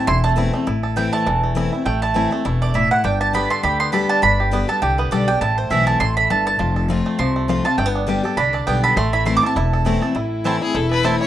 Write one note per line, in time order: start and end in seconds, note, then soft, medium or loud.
0.00 0.21 A4 medium
0.07 0.48 E1 loud
0.07 0.64 E2 loud
0.07 0.36 E4 medium
0.07 0.23 C6 loud
0.24 0.52 A3 medium
0.24 0.32 A5 loud
0.36 0.52 E3 medium
0.36 0.53 A3 medium
0.36 0.53 C4 medium
0.36 0.66 E4 medium
0.36 0.51 E4 loud
0.53 0.67 A3 medium
0.53 0.67 C4 medium
0.53 0.66 E4 medium
0.67 1.07 A1 medium
0.67 1.24 A2 medium
0.67 0.96 E4 medium
0.83 1.24 A4 medium
0.96 1.25 E3 medium
0.96 1.25 A3 loud
0.96 1.26 C4 medium
0.96 1.40 E4 medium
0.96 1.26 E4 loud
0.96 1.12 G5 medium
1.13 1.42 A3 medium
1.13 1.41 A5 loud
1.26 1.67 E1 medium
1.26 1.83 E2 loud
1.26 1.69 E3 medium
1.44 1.83 A3 medium
1.55 1.71 E3 loud
1.55 1.72 A3 medium
1.55 1.72 C4 medium
1.55 1.71 E4 medium
1.55 1.71 E4 loud
1.72 1.86 C4 medium
1.72 1.85 E4 medium
1.72 2.02 E4 medium
1.86 2.26 A1 medium
1.86 2.42 A2 medium
1.86 2.29 A3 medium
1.86 2.01 G5 medium
2.02 2.15 E4 medium
2.02 2.30 A5 loud
2.14 2.30 E3 medium
2.14 2.31 A3 medium
2.14 2.31 C4 loud
2.14 2.45 E4 medium
2.14 2.29 E4 medium
2.31 2.60 A3 medium
2.31 2.45 C4 soft
2.31 2.44 E4 medium
2.45 2.85 E1 medium
2.45 2.73 B2 loud
2.45 2.74 E4 medium
2.62 3.02 A3 medium
2.62 2.75 D5 loud
2.74 3.03 A2 medium
2.74 2.90 E4 medium
2.74 2.91 E5 medium
2.91 3.04 E4 medium
2.91 3.04 F#5 medium
3.04 3.44 G1 loud
3.04 3.61 G2 loud
3.04 3.47 D4 medium
3.04 3.20 G5 medium
3.21 3.61 G4 medium
3.21 3.34 A5 loud
3.33 3.62 D3 medium
3.33 3.62 G3 medium
3.33 3.77 B3 medium
3.33 3.63 B3 loud
3.33 3.63 G4 loud
3.33 3.50 B5 loud
3.50 3.91 A4 medium
3.50 3.63 C6 loud
3.63 4.04 D2 medium
3.63 3.91 D3 medium
3.63 4.07 G4 medium
3.63 3.79 B5 loud
3.80 4.20 B3 medium
3.80 3.92 C6 loud
3.92 4.21 D3 medium
3.92 4.21 G3 medium
3.92 4.22 B3 loud
3.92 4.22 G4 loud
3.92 4.36 A4 medium
3.92 4.09 B5 medium
4.09 4.22 D4 medium
4.09 4.22 A5 loud
4.22 4.63 G1 medium
4.22 4.79 G2 medium
4.22 4.66 D4 medium
4.22 4.66 B5 loud
4.40 4.80 G4 medium
4.51 4.68 D3 medium
4.51 4.68 G3 medium
4.51 4.68 B3 medium
4.51 4.95 B3 medium
4.51 4.66 G4 loud
4.67 4.82 B3 soft
4.67 4.81 G4 medium
4.67 5.09 A4 medium
4.67 4.82 A5 loud
4.82 5.07 C2 medium
4.82 5.10 D3 medium
4.82 5.25 G4 medium
4.82 4.98 G5 medium
4.98 5.39 B3 medium
4.98 5.11 B4 medium
5.11 5.37 B1 medium
5.11 5.27 D3 medium
5.11 5.28 G3 loud
5.11 5.28 B3 medium
5.11 5.26 G4 medium
5.11 5.42 A4 medium
5.11 5.28 D5 medium
5.28 5.42 B3 soft
5.28 5.42 D4 medium
5.28 5.41 G4 medium
5.28 5.41 G5 loud
5.41 5.61 A1 medium
5.41 5.98 A2 loud
5.41 5.85 E4 medium
5.41 5.57 A5 loud
5.58 5.71 C5 medium
5.70 5.96 B1 medium
5.70 5.99 E3 loud
5.70 5.99 A3 medium
5.70 6.14 A3 medium
5.70 6.00 C4 loud
5.70 6.00 E4 loud
5.70 5.86 E5 medium
5.87 6.28 A4 medium
5.87 6.00 A5 loud
6.00 6.26 A1 loud
6.00 6.29 A2 medium
6.00 6.43 E4 medium
6.00 6.16 C6 loud
6.17 6.57 A3 medium
6.17 6.30 B5 loud
6.30 6.55 G1 medium
6.30 6.58 G2 medium
6.30 6.60 A4 medium
6.30 6.46 A5 loud
6.46 6.59 E4 medium
6.46 6.74 A5 loud
6.59 7.00 F1 medium
6.59 7.16 F2 medium
6.59 6.89 F4 medium
6.76 7.16 A4 medium
6.88 7.17 F3 medium
6.88 7.18 A3 medium
6.88 7.18 C4 loud
6.88 7.32 F4 medium
6.88 7.19 F4 loud
7.06 7.35 A3 medium
7.19 7.59 C2 loud
7.19 7.75 C3 loud
7.19 7.62 F3 medium
7.19 7.62 C6 loud
7.36 7.76 A3 medium
7.48 7.64 F3 medium
7.48 7.65 A3 loud
7.48 7.65 C4 loud
7.48 7.65 F4 medium
7.48 7.63 F4 loud
7.64 7.79 C4 soft
7.64 7.77 F4 medium
7.64 7.79 F4 medium
7.64 7.77 A5 loud
7.78 8.18 G1 medium
7.78 8.35 G2 medium
7.78 7.86 A3 medium
7.78 7.88 G5 medium
7.86 8.08 B3 medium
7.95 8.35 D4 medium
8.07 8.23 D3 medium
8.07 8.23 G3 loud
8.07 8.24 B3 loud
8.07 8.51 G4 medium
8.07 8.22 G4 loud
8.23 8.38 B3 medium
8.23 8.37 G4 medium
8.23 8.53 A4 medium
8.37 8.62 C2 medium
8.37 8.66 D3 loud
8.37 8.80 D4 medium
8.37 8.53 B5 loud
8.53 8.82 A4 medium
8.53 8.66 D5 medium
8.67 8.92 B1 medium
8.67 8.95 D3 medium
8.67 8.96 G3 medium
8.67 8.97 B3 medium
8.67 8.96 B3 medium
8.67 8.96 G4 loud
8.67 8.83 G5 medium
8.83 8.97 A4 medium
8.83 8.97 B5 loud
8.96 9.37 A1 medium
8.96 9.53 A2 loud
8.96 9.40 A3 medium
8.96 9.13 C6 loud
9.13 9.25 E4 medium
9.13 9.26 B5 loud
9.25 9.42 E3 medium
9.25 9.42 A3 loud
9.25 9.42 C4 loud
9.25 9.56 E4 medium
9.25 9.41 E4 loud
9.25 9.36 C6 loud
9.37 9.46 D6 loud
9.42 9.56 C4 medium
9.42 9.55 E4 medium
9.42 9.72 A4 medium
9.46 10.05 A5 medium
9.56 9.96 E1 loud
9.56 10.13 E2 loud
9.56 9.99 E4 medium
9.73 10.01 A4 medium
9.85 10.01 E3 medium
9.85 10.01 A3 loud
9.85 10.16 A3 medium
9.85 10.02 C4 loud
9.85 10.00 E4 loud
10.01 10.16 C4 medium
10.01 10.15 E4 medium
10.01 10.16 A4 medium
10.14 10.56 A1 medium
10.14 10.72 A2 medium
10.14 11.27 E4 loud
10.14 10.58 E4 medium
10.44 10.60 E3 medium
10.44 10.61 A3 medium
10.44 10.88 A3 medium
10.44 10.55 C4 medium
10.44 10.61 C4 medium
10.44 10.55 E4 medium
10.44 10.61 E4 loud
10.44 10.55 C5 medium
10.44 10.56 A5 loud
10.62 10.75 C4 medium
10.62 10.73 E4 medium
10.62 10.74 E4 medium
10.62 10.78 G#4 medium
10.74 11.15 E1 medium
10.74 11.27 E2 medium
10.74 11.03 E4 medium
10.74 10.90 A4 medium
10.91 11.27 A4 medium
10.91 11.06 B4 loud
11.03 11.27 E3 medium
11.03 11.27 A3 medium
11.03 11.14 C4 medium
11.03 11.27 C4 medium
11.03 11.20 E4 medium
11.03 11.15 E4 medium
11.03 11.27 E4 loud
11.03 11.19 C5 medium
11.03 11.15 C5 medium
11.03 11.15 A5 medium
11.20 11.27 E4 medium
11.20 11.27 C#5 loud